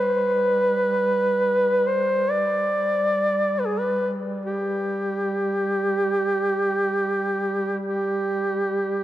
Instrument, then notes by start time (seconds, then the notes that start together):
duduk
Already playing: G3
0.00 B4
1.87 C5
2.30 D5
3.59 B4
3.66 G#4
3.79 B4
4.46 G4
7.86 G4